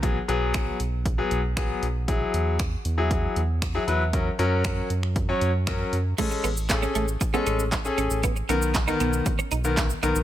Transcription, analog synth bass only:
Already playing: B1
0.29 B1
0.80 B1
1.31 B1
1.83 B1
2.34 E2
2.85 E2
3.37 E2
3.88 E2
4.39 F#2
4.90 F#2
5.42 F#2
5.93 F#2
6.44 A1
6.95 A1
7.47 A1
7.98 A1
8.11 A1
8.49 B1
9.01 B1
9.52 B1
10.03 B1
10.16 B1

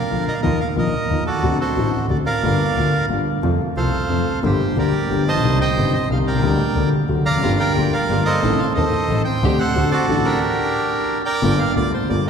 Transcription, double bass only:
0.11 A#1
0.44 D#2
0.77 A#1
1.10 D#2
1.43 D2
1.76 A1
2.09 D2
2.43 G1
2.76 D2
3.10 G1
3.43 F2
3.76 C2
4.10 F2
4.43 G1
4.77 D2
5.10 G1
5.27 A#1
5.44 C2
5.77 G1
6.10 C2
6.26 C2
6.43 D2
6.76 D2
7.09 D2
7.26 F1
7.42 G1
7.76 D2
8.10 G1
8.43 A1
8.76 D#2
9.09 A1
9.43 D2
9.76 D2
10.09 A1
11.43 G1
11.76 D2
12.09 G1

